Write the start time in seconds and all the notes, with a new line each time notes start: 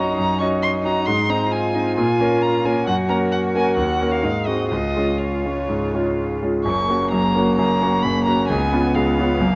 Already playing: F#2 C#4 D#4 F#4 D#5 A#5
0.17 F#2 A#5
0.39 C#4 F#4 D#5 C#6
0.62 C6
0.84 C#4 F#4 D#5 A#5
1.06 G#2 C6
1.29 C4 D#4 D#5 A#5
1.51 F4 G#5
1.74 C4 D#4 D#5
1.96 A#2 G#5
2.20 A#3 C#4 A#4
2.42 A#5
2.64 A#3 C#4 A#4 G#5
2.87 F#2 F#4 F#5
3.09 A#3 C#4 A#4 A#5
3.32 F#5
3.55 A#3 C#4 A#4 G#5
3.76 D#2 F#5
4.01 A#3 C#4 A#4
4.11 F5
4.23 G#2 D#4
4.46 G#3 C4 F#4 D#5
4.69 C#2 F4 D#5
4.96 G#3 C#4 F4
5.18 C#5
5.45 G#3 C#4 F4
5.69 G#2
5.93 G#3 C#4 F4
6.42 G#3 C#4 F4
6.65 F#1 F#2 A#3 C#6
6.89 A#3 C#4 F#4
7.11 F#1 F#2 A#5
7.35 A#3 C#4 F#4
7.56 F#1 F#2 A#5
7.81 A#3 C#4 F#4
8.02 F#1 F#2 B5
8.25 A#3 C#4 F#4 A#5
8.48 C#2 C#3 B3 G#5
8.73 B3 C#4 F4
8.95 C#2 C#3 F5
9.18 B3 C#4 F4
9.40 F#1 F#2 A#3